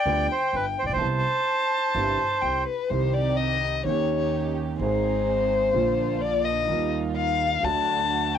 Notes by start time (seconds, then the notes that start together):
Already playing: D5 G5
0.06 D2 D3 G3 B3 F4
0.32 C5
0.53 G1 G2 B4
0.79 A1 C5
0.83 A1 D5
0.89 A#1 C5
0.95 B1
1.00 C2 C3 G3 B3 E4 A5
1.95 G1 G2 C3 G3 B3 E4
2.42 C2 C3 G5
2.67 B4
2.90 C2 C3 D#3 G3 C4 D#4 G4 C5
3.14 D5
3.37 D#5
3.84 D#2 D#3 A#3 C#4 D#4 G4 C#5
3.89 G4
4.79 G#1 G#2 D#3 G#3 C4 D#4 G#4 C5
5.73 A#1 A#2 D3 F3 A#3 D4 F4
5.77 F4
6.21 D5
6.45 D#5
6.67 D#2 D#3 G3 A#3 D#4 F4
7.17 F5
7.62 D2 D3 F#3 A3 D4 F#4 A5
8.35 G5